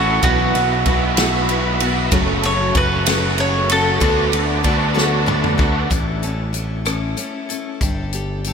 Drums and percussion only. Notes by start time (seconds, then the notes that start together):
0.23 kick, ride
0.55 ride
0.86 kick, ride
1.17 snare, ride
1.49 ride
1.80 ride
2.12 kick, ride
2.43 ride
2.75 kick, ride
3.06 snare, ride
3.38 ride
3.69 ride
4.01 kick, ride
4.33 ride
4.64 kick, ride
4.98 snare
5.28 mid tom
5.44 mid tom
5.59 kick
5.91 kick, closed hi-hat
6.23 closed hi-hat
6.54 closed hi-hat
6.85 cross-stick, closed hi-hat
7.17 closed hi-hat
7.50 closed hi-hat
7.81 kick, closed hi-hat
8.13 closed hi-hat
8.44 closed hi-hat